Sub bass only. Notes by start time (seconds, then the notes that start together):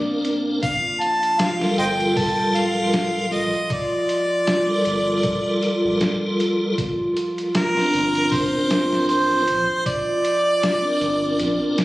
0.63 G1
1.78 G1
2.38 D1
3.32 A#1
4.86 G1
5.24 A#1
5.84 A#1
6.01 D1
6.78 G1
7.94 G1
8.54 D1
9.48 A#1
11.01 G1
11.39 A#1